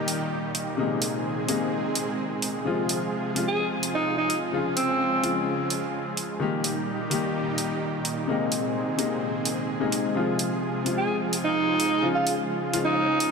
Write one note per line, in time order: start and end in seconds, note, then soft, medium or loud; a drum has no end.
0.00 2.62 A#2 medium
0.00 0.80 D#3 medium
0.00 2.62 D#3 medium
0.00 0.76 G3 medium
0.00 0.80 G3 medium
0.00 0.79 A#3 medium
0.00 0.76 D#4 medium
0.00 0.76 G4 medium
0.00 0.80 G4 medium
0.08 open hi-hat medium
0.55 open hi-hat loud
0.77 1.45 C3 medium
0.77 1.46 G#3 medium
0.77 4.49 G#3 medium
0.77 1.46 A#3 medium
0.77 2.64 C4 medium
0.77 1.46 D#4 medium
0.77 2.64 G#4 medium
1.02 open hi-hat medium
1.48 1.59 C3 medium
1.48 1.59 G#3 medium
1.48 1.59 A#3 medium
1.48 1.60 D#4 medium
1.48 open hi-hat medium
1.95 open hi-hat loud
2.42 open hi-hat medium
2.65 3.33 C3 medium
2.65 4.51 C3 medium
2.65 4.51 F3 medium
2.65 3.33 F3 medium
2.65 3.33 G#3 medium
2.65 6.37 F4 medium
2.65 3.34 F4 medium
2.65 6.37 G#4 medium
2.89 open hi-hat medium
3.35 4.50 C3 medium
3.35 4.50 F3 medium
3.35 4.51 G#3 medium
3.35 4.51 F4 medium
3.35 open hi-hat medium
3.48 3.67 G#4 medium
3.83 open hi-hat medium
3.95 4.18 D#4 medium
4.18 4.37 D#4 medium
4.30 open hi-hat medium
4.52 5.20 C#3 medium
4.52 6.39 C#3 medium
4.52 5.21 F3 medium
4.52 6.39 F3 medium
4.52 6.39 G#3 medium
4.52 5.21 G#3 medium
4.52 5.21 F4 medium
4.77 5.42 C4 medium
4.77 open hi-hat medium
5.23 5.34 C#3 medium
5.23 5.34 F3 medium
5.23 5.34 G#3 medium
5.23 5.35 F4 medium
5.23 open hi-hat medium
5.70 open hi-hat medium
6.17 open hi-hat medium
6.40 10.12 A#2 medium
6.40 7.08 D#3 medium
6.40 10.12 D#3 medium
6.40 7.08 G3 medium
6.40 8.26 G3 medium
6.40 7.08 A#3 medium
6.40 8.26 D#4 medium
6.40 8.26 G4 medium
6.40 7.09 G4 medium
6.64 open hi-hat medium
7.10 8.25 D#3 medium
7.10 8.25 G3 medium
7.10 8.26 A#3 medium
7.10 8.26 G4 medium
7.10 open hi-hat medium
7.58 open hi-hat medium
8.05 open hi-hat medium
8.27 8.95 C3 medium
8.27 8.96 G#3 medium
8.27 13.31 G#3 medium
8.27 8.96 A#3 medium
8.27 10.14 C4 medium
8.27 8.96 D#4 medium
8.27 13.31 G#4 medium
8.52 open hi-hat medium
8.98 9.09 C3 medium
8.98 9.09 G#3 medium
8.98 9.09 A#3 medium
8.98 9.10 D#4 medium
8.98 open hi-hat medium
9.45 open hi-hat medium
9.80 9.91 C3 medium
9.80 9.91 G#3 medium
9.80 9.91 A#3 medium
9.80 9.92 D#4 medium
9.92 open hi-hat medium
10.14 10.83 C3 medium
10.14 12.01 C3 medium
10.14 10.83 F3 medium
10.14 13.31 F3 medium
10.14 10.83 G#3 medium
10.14 13.31 F4 medium
10.14 10.84 F4 medium
10.39 open hi-hat medium
10.85 12.00 C3 medium
10.85 12.00 F3 medium
10.85 12.01 G#3 medium
10.85 12.01 F4 medium
10.85 open hi-hat medium
10.98 11.17 G#4 medium
11.33 open hi-hat medium
11.45 12.08 D#4 medium
11.80 open hi-hat medium
12.02 12.70 C#3 medium
12.02 13.31 C#3 medium
12.02 12.71 F3 medium
12.02 12.71 G#3 medium
12.02 12.71 F4 medium
12.15 12.34 F4 medium
12.27 open hi-hat medium
12.73 12.84 C#3 medium
12.73 12.84 F3 medium
12.73 12.84 G#3 medium
12.73 12.85 F4 medium
12.73 open hi-hat loud
12.85 13.31 D#4 medium
13.20 open hi-hat loud